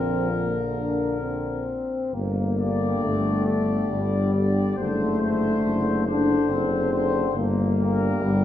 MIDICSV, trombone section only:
0, 0, Header, 1, 2, 480
1, 0, Start_track
1, 0, Key_signature, -2, "minor"
1, 0, Tempo, 916031
1, 1118, Time_signature, 3, 2, 24, 8
1, 1590, Tempo, 863309
1, 4598, End_track
2, 0, Start_track
2, 0, Title_t, "Trombone section"
2, 0, Program_c, 0, 61
2, 0, Note_on_c, 0, 53, 44
2, 303, Note_off_c, 0, 53, 0
2, 392, Note_on_c, 0, 62, 48
2, 614, Note_off_c, 0, 62, 0
2, 630, Note_on_c, 0, 60, 46
2, 1108, Note_off_c, 0, 60, 0
2, 1118, Note_on_c, 0, 58, 57
2, 1588, Note_off_c, 0, 58, 0
2, 1588, Note_on_c, 0, 57, 59
2, 2068, Note_on_c, 0, 55, 57
2, 2069, Note_off_c, 0, 57, 0
2, 2552, Note_on_c, 0, 57, 63
2, 2556, Note_off_c, 0, 55, 0
2, 3257, Note_off_c, 0, 57, 0
2, 3273, Note_on_c, 0, 62, 67
2, 3512, Note_on_c, 0, 60, 71
2, 3515, Note_off_c, 0, 62, 0
2, 3993, Note_off_c, 0, 60, 0
2, 3993, Note_on_c, 0, 58, 72
2, 4462, Note_off_c, 0, 58, 0
2, 4467, Note_on_c, 0, 55, 69
2, 4598, Note_off_c, 0, 55, 0
2, 4598, End_track
0, 0, End_of_file